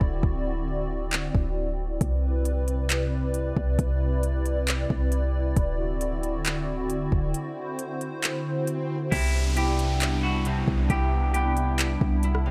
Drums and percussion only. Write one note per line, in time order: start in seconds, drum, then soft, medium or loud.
0.01 kick medium
0.23 kick loud
1.13 clap loud
1.35 kick loud
2.01 kick loud
2.01 closed hi-hat medium
2.45 closed hi-hat medium
2.68 closed hi-hat medium
2.90 clap loud
2.90 closed hi-hat medium
3.34 closed hi-hat medium
3.57 kick medium
3.79 kick loud
3.79 closed hi-hat medium
4.23 closed hi-hat medium
4.46 closed hi-hat medium
4.68 clap loud
4.68 closed hi-hat medium
4.90 kick loud
5.12 closed hi-hat medium
5.56 kick loud
5.56 closed hi-hat medium
6.01 closed hi-hat medium
6.23 closed hi-hat medium
6.45 clap loud
6.45 closed hi-hat medium
6.90 closed hi-hat medium
7.12 kick medium
7.34 closed hi-hat medium
7.79 closed hi-hat medium
8.01 closed hi-hat medium
8.23 clap loud
8.23 closed hi-hat medium
8.67 closed hi-hat medium
9.12 kick loud
9.12 closed hi-hat medium
9.12 crash loud
9.57 closed hi-hat medium
9.79 closed hi-hat medium
10.01 clap loud
10.01 closed hi-hat medium
10.45 closed hi-hat medium
10.68 kick medium
10.90 kick loud
10.90 closed hi-hat medium
11.34 closed hi-hat medium
11.57 closed hi-hat medium
11.79 clap loud
11.79 closed hi-hat medium
12.01 kick loud
12.23 closed hi-hat medium
12.35 cross-stick medium